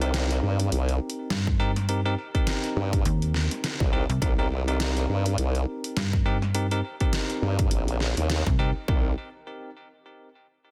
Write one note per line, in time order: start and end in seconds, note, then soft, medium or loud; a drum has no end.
0.00 0.41 C2 medium
0.00 1.57 C4 medium
0.00 1.57 D#4 medium
0.00 1.57 G4 medium
0.00 1.57 A#4 medium
0.00 closed hi-hat soft
0.14 snare loud
0.14 closed hi-hat medium
0.31 closed hi-hat soft
0.43 0.70 G2 medium
0.60 closed hi-hat medium
0.72 0.99 C2 medium
0.72 closed hi-hat medium
0.89 closed hi-hat soft
1.10 closed hi-hat soft
1.30 2.16 G2 loud
1.30 snare loud
1.30 closed hi-hat medium
1.47 kick loud
1.60 1.71 C4 loud
1.60 1.71 D#4 medium
1.60 1.71 G4 medium
1.60 1.71 A#4 loud
1.76 snare soft
1.76 closed hi-hat soft
1.89 2.00 C4 medium
1.89 2.00 D#4 medium
1.89 2.00 G4 medium
1.89 2.00 A#4 medium
1.89 closed hi-hat medium
2.05 2.14 C4 medium
2.05 2.14 D#4 medium
2.05 2.14 G4 medium
2.05 2.14 A#4 loud
2.35 3.90 C4 medium
2.35 3.90 D#4 medium
2.35 3.90 G4 medium
2.35 3.90 A#4 loud
2.35 kick medium
2.35 closed hi-hat soft
2.47 snare loud
2.47 closed hi-hat medium
2.64 closed hi-hat soft
2.76 3.04 G2 medium
2.93 kick loud
2.93 closed hi-hat medium
3.05 3.49 D#2 loud
3.05 closed hi-hat medium
3.22 closed hi-hat soft
3.34 snare medium
3.51 snare soft
3.51 closed hi-hat medium
3.64 snare loud
3.64 closed hi-hat medium
3.80 4.07 C2 medium
3.80 kick loud
3.93 4.04 C4 loud
3.93 4.04 D#4 medium
3.93 4.04 G4 medium
3.93 4.04 A#4 loud
4.09 4.20 C2 loud
4.09 closed hi-hat soft
4.22 5.07 C2 loud
4.22 4.33 C4 medium
4.22 4.33 D#4 medium
4.22 4.33 G4 medium
4.22 4.33 A#4 medium
4.22 kick loud
4.22 closed hi-hat medium
4.39 4.47 C4 medium
4.39 4.47 D#4 medium
4.39 4.47 G4 medium
4.39 4.47 A#4 loud
4.68 6.23 C4 medium
4.68 6.23 D#4 medium
4.68 6.23 G4 medium
4.68 6.23 A#4 medium
4.68 closed hi-hat soft
4.80 snare loud
4.80 closed hi-hat medium
4.97 closed hi-hat soft
5.09 5.36 G2 medium
5.26 closed hi-hat medium
5.38 5.66 C2 loud
5.38 closed hi-hat medium
5.55 closed hi-hat soft
5.84 closed hi-hat medium
5.97 6.82 G2 loud
5.97 snare loud
5.97 closed hi-hat medium
6.13 kick loud
6.26 6.37 C4 loud
6.26 6.37 D#4 medium
6.26 6.37 G4 medium
6.26 6.37 A#4 loud
6.42 snare medium
6.55 6.66 C4 medium
6.55 6.66 D#4 medium
6.55 6.66 G4 medium
6.55 6.66 A#4 medium
6.55 closed hi-hat medium
6.71 6.80 C4 medium
6.71 6.80 D#4 medium
6.71 6.80 G4 medium
6.71 6.80 A#4 loud
6.71 closed hi-hat soft
7.00 8.56 C4 medium
7.00 8.56 D#4 medium
7.00 8.56 G4 medium
7.00 8.56 A#4 medium
7.00 kick medium
7.00 closed hi-hat soft
7.13 snare loud
7.13 closed hi-hat medium
7.30 closed hi-hat soft
7.42 7.69 G2 medium
7.59 kick loud
7.59 closed hi-hat medium
7.71 8.15 A#1 loud
7.71 closed hi-hat medium
7.88 closed hi-hat soft
8.00 snare medium
8.17 8.44 D#2 loud
8.17 snare soft
8.17 closed hi-hat medium
8.30 snare loud
8.30 closed hi-hat medium
8.47 8.73 C2 loud
8.47 kick loud
8.47 closed hi-hat soft
8.59 8.70 C4 loud
8.59 8.70 D#4 medium
8.59 8.70 G4 medium
8.59 8.70 A#4 loud
8.88 9.15 C2 loud
8.88 9.11 C4 medium
8.88 9.11 D#4 medium
8.88 9.11 G4 medium
8.88 9.11 A#4 medium
8.88 kick loud